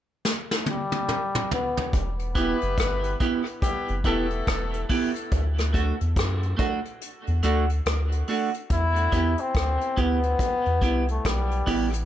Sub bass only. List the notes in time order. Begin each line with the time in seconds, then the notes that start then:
1.94 E1
2.63 F#1
2.78 G1
3.89 F#1
4.05 E1
4.47 E1
5.32 D2
6.01 E2
6.17 F#2
7.28 E2
7.43 D2
7.86 D2
8.71 E2
9.13 E2
9.55 D2
9.98 D2
10.66 E2
10.82 C2
11.26 B1
11.68 A1